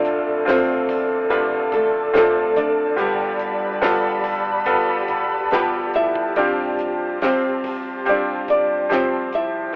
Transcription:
0.00 0.85 D2 loud
0.00 0.85 A2 medium
0.00 0.46 D3 medium
0.00 0.46 A3 medium
0.00 0.43 C4 medium
0.00 0.47 C4 medium
0.00 0.43 D4 medium
0.00 0.45 D4 medium
0.00 0.43 F4 medium
0.00 0.49 F4 medium
0.00 2.93 A4 medium
0.00 0.48 D5 medium
0.00 6.32 D5 medium
0.00 9.69 A5 medium
0.04 hi-hat pedal medium
0.04 open hi-hat medium
0.45 1.29 D3 medium
0.45 1.29 A3 medium
0.45 1.26 C4 medium
0.45 1.31 C4 medium
0.45 1.26 D4 medium
0.45 1.26 F4 medium
0.45 1.32 F4 medium
0.45 1.30 C5 medium
0.45 snare loud
0.45 hi-hat pedal medium
0.45 open hi-hat medium
0.50 1.28 C4 medium
0.89 1.69 E2 medium
0.89 kick medium
0.89 hi-hat pedal medium
0.89 open hi-hat medium
1.30 2.10 C3 medium
1.30 2.14 D3 medium
1.30 2.14 A3 medium
1.30 1.70 B3 medium
1.30 2.10 D4 medium
1.30 2.10 F4 medium
1.30 2.16 F4 medium
1.30 1.69 B4 medium
1.30 hi-hat pedal medium
1.30 open hi-hat medium
1.72 2.11 E2 medium
1.72 2.13 A3 medium
1.72 2.13 A4 medium
1.72 kick medium
1.72 hi-hat pedal medium
1.72 open hi-hat medium
2.13 2.54 D2 medium
2.13 2.98 D3 medium
2.13 2.98 A3 medium
2.13 2.55 A3 medium
2.13 2.93 C4 medium
2.13 2.99 C4 medium
2.13 2.93 D4 medium
2.13 2.93 F4 medium
2.13 3.00 F4 medium
2.13 2.57 A4 medium
2.13 snare loud
2.13 hi-hat pedal medium
2.13 open hi-hat medium
2.56 2.95 F1 medium
2.56 3.79 D4 medium
2.56 3.78 D5 medium
2.56 hi-hat pedal medium
2.56 open hi-hat medium
2.96 5.05 G1 loud
2.96 4.19 G2 medium
2.96 4.66 G2 medium
2.96 4.19 D3 medium
2.96 4.66 D3 medium
2.96 4.65 F3 medium
2.96 4.66 G3 medium
2.96 3.77 B3 medium
2.96 3.77 F4 medium
2.96 3.77 G4 medium
2.96 9.70 G4 medium
2.96 6.33 B5 medium
2.96 hi-hat pedal medium
2.96 open hi-hat medium
3.00 4.67 B3 medium
3.00 4.68 G4 medium
3.39 hi-hat pedal medium
3.39 open hi-hat medium
3.81 4.62 B3 medium
3.81 4.62 F4 medium
3.81 4.62 A4 medium
3.81 snare loud
3.81 hi-hat pedal medium
3.81 open hi-hat medium
4.24 kick medium
4.24 hi-hat pedal medium
4.24 open hi-hat medium
4.65 5.50 F3 medium
4.65 5.51 G3 medium
4.65 5.47 B3 medium
4.65 5.51 B3 medium
4.65 5.47 F4 medium
4.65 5.53 G4 medium
4.65 5.47 A4 medium
4.65 kick medium
4.65 hi-hat pedal medium
4.65 open hi-hat medium
5.08 5.90 G1 medium
5.08 kick medium
5.08 hi-hat pedal medium
5.08 open hi-hat medium
5.51 6.36 F3 medium
5.51 6.32 F3 medium
5.51 6.37 G3 medium
5.51 6.32 B3 medium
5.51 6.37 B3 medium
5.51 5.92 B3 medium
5.51 6.33 G4 medium
5.51 6.38 G4 medium
5.51 5.95 B4 medium
5.51 snare loud
5.51 hi-hat pedal medium
5.51 open hi-hat medium
5.93 6.34 G1 medium
5.93 6.34 E4 medium
5.93 6.34 E5 medium
5.93 hi-hat pedal medium
5.93 open hi-hat medium
6.15 kick medium
6.36 7.65 F1 loud
6.36 7.60 C3 medium
6.36 7.19 F3 medium
6.36 7.21 G3 medium
6.36 7.17 C4 medium
6.36 7.22 C4 medium
6.36 7.18 D4 medium
6.36 7.17 F4 medium
6.36 7.22 F4 medium
6.36 7.18 G4 medium
6.36 9.70 C5 medium
6.36 7.17 D5 medium
6.36 kick loud
6.36 hi-hat pedal medium
6.36 open hi-hat medium
6.78 hi-hat pedal medium
6.78 open hi-hat medium
7.20 8.05 F3 medium
7.20 8.07 G3 medium
7.20 8.02 C4 medium
7.20 8.07 C4 medium
7.20 8.03 C4 medium
7.20 8.02 F4 medium
7.20 8.07 F4 medium
7.20 8.02 G4 medium
7.20 8.03 C5 medium
7.20 snare loud
7.20 hi-hat pedal medium
7.20 open hi-hat medium
7.64 8.45 G1 medium
7.64 kick medium
7.64 hi-hat pedal medium
7.64 open hi-hat medium
8.05 8.89 F3 medium
8.05 8.90 G3 medium
8.05 8.86 C4 medium
8.05 8.91 C4 medium
8.05 8.86 F4 medium
8.05 8.91 F4 medium
8.05 8.86 G4 medium
8.05 8.49 D5 medium
8.05 hi-hat pedal medium
8.05 open hi-hat loud
8.10 8.47 D4 medium
8.48 8.90 G1 medium
8.48 8.89 D4 medium
8.48 8.92 D5 medium
8.48 kick medium
8.48 hi-hat pedal medium
8.48 open hi-hat medium
8.89 9.29 F1 medium
8.89 9.69 F3 medium
8.89 9.72 F3 medium
8.89 9.74 G3 medium
8.89 9.69 C4 medium
8.89 9.75 C4 medium
8.89 9.30 C4 medium
8.89 9.69 G4 medium
8.89 snare loud
8.89 hi-hat pedal medium
8.89 open hi-hat medium
8.93 9.35 C5 medium
9.32 9.71 F1 medium
9.32 9.75 E4 medium
9.32 9.75 E5 medium
9.32 hi-hat pedal medium
9.32 open hi-hat medium

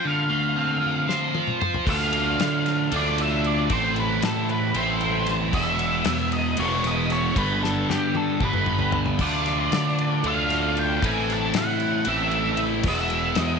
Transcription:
0.00 0.81 F4 medium
0.05 1.35 D3 medium
0.05 1.33 F5 medium
0.30 1.61 A3 medium
0.56 1.87 C4 medium
0.81 1.33 F4 medium
1.08 1.59 C5 medium
1.08 snare medium
1.35 1.87 F4 medium
1.35 high tom medium
1.47 mid tom medium
1.61 1.87 C5 medium
1.61 mid tom loud
1.74 floor tom medium
1.86 2.35 D2 medium
1.86 2.90 D3 medium
1.86 2.91 A3 loud
1.86 2.91 D4 loud
1.86 2.92 F4 loud
1.86 2.96 F5 medium
1.86 kick loud
1.86 crash loud
2.13 ride medium
2.39 2.88 D3 medium
2.39 snare loud
2.39 ride loud
2.66 snare soft
2.66 ride medium
2.91 3.67 D2 loud
2.91 3.69 D3 medium
2.91 3.70 A3 medium
2.91 3.70 D4 medium
2.91 3.70 F4 medium
2.91 ride loud
2.96 3.21 D5 medium
3.18 3.45 E5 medium
3.18 ride medium
3.44 3.73 D5 medium
3.44 ride medium
3.70 4.19 A1 loud
3.70 4.73 A2 loud
3.70 4.74 E3 loud
3.70 4.74 A3 medium
3.70 4.74 C4 medium
3.70 4.73 E4 loud
3.70 3.96 C5 medium
3.70 kick loud
3.70 ride medium
3.96 4.23 B4 medium
3.96 ride medium
4.22 4.71 A2 medium
4.22 4.50 A4 medium
4.22 snare loud
4.22 ride loud
4.49 4.76 B4 medium
4.49 ride medium
4.74 5.50 A1 loud
4.74 5.53 A2 medium
4.74 5.52 E3 medium
4.74 5.53 A3 medium
4.74 5.52 C4 medium
4.74 5.52 E4 medium
4.74 5.31 C5 medium
4.74 ride medium
5.01 ride medium
5.26 snare soft
5.26 ride medium
5.53 6.02 E1 medium
5.53 6.56 E2 loud
5.53 6.56 B2 medium
5.53 6.57 E3 loud
5.53 6.57 G#3 medium
5.53 6.57 B3 loud
5.53 6.57 E4 loud
5.53 6.29 E5 medium
5.53 kick loud
5.53 crash loud
5.79 ride medium
6.04 6.54 E2 medium
6.04 snare loud
6.04 ride loud
6.32 6.57 D#5 medium
6.32 ride medium
6.57 7.33 E1 loud
6.57 7.35 E2 medium
6.57 7.36 B2 medium
6.57 7.36 E3 medium
6.57 7.36 G#3 medium
6.57 6.86 C#5 loud
6.57 ride loud
6.61 7.37 B3 medium
6.61 7.37 E4 medium
6.84 7.12 D#5 medium
6.84 snare soft
6.84 ride medium
7.10 7.36 C#5 medium
7.10 snare soft
7.10 ride medium
7.36 7.85 G1 medium
7.36 8.39 G2 medium
7.36 8.40 D3 medium
7.36 8.40 G3 medium
7.36 8.40 B3 medium
7.36 8.41 D4 loud
7.36 8.40 G4 loud
7.36 7.63 B4 medium
7.36 kick loud
7.36 ride loud
7.63 7.90 A4 medium
7.63 snare medium
7.89 8.38 G2 medium
7.89 8.16 G4 medium
7.89 snare medium
8.15 8.43 A4 medium
8.15 high tom medium
8.40 9.15 G1 medium
8.40 9.19 D3 medium
8.40 9.19 G3 medium
8.40 9.19 B3 medium
8.40 9.19 D4 loud
8.40 9.18 G4 medium
8.40 kick loud
8.40 mid tom medium
8.45 9.20 G2 medium
8.45 8.98 B4 loud
8.53 mid tom medium
8.66 mid tom loud
8.79 floor tom medium
8.92 floor tom loud
9.06 floor tom medium
9.19 9.68 D2 medium
9.19 10.23 D3 medium
9.19 10.23 A3 medium
9.19 10.24 D4 loud
9.19 10.27 D5 loud
9.19 kick loud
9.19 crash loud
9.23 10.24 F4 loud
9.46 snare soft
9.46 ride medium
9.72 10.20 D3 medium
9.72 snare loud
9.72 ride loud
9.99 ride medium
10.24 10.98 D2 loud
10.24 11.01 D3 medium
10.24 11.02 A3 medium
10.24 11.02 D4 medium
10.24 ride loud
10.28 11.03 F4 medium
10.28 10.75 F5 loud
10.50 snare soft
10.50 ride medium
10.77 11.02 G5 loud
10.77 ride medium
11.02 11.51 A1 medium
11.02 12.05 A2 medium
11.02 12.08 E3 loud
11.02 12.06 A3 loud
11.02 12.06 C4 medium
11.02 12.06 E4 loud
11.02 11.31 G#5 loud
11.02 kick loud
11.02 ride loud
11.30 11.57 A5 loud
11.30 snare soft
11.30 ride medium
11.54 12.03 A2 medium
11.54 12.05 F#5 loud
11.54 snare loud
11.54 ride loud
11.80 ride medium
12.05 12.81 A1 loud
12.05 12.87 E3 medium
12.05 12.85 A3 medium
12.05 12.84 C4 medium
12.05 12.88 E4 medium
12.05 12.62 E5 loud
12.05 ride loud
12.10 12.85 A2 medium
12.31 ride medium
12.57 ride medium
12.83 13.33 E1 medium
12.83 13.59 E2 loud
12.83 13.59 B2 loud
12.83 kick loud
12.83 crash loud
12.87 13.59 E3 loud
12.87 13.59 G#3 loud
12.87 13.59 B3 loud
12.87 13.59 E4 loud
12.87 13.38 E5 loud
13.10 ride medium
13.35 13.59 E2 medium
13.35 13.59 D#5 loud
13.35 snare loud
13.35 ride loud

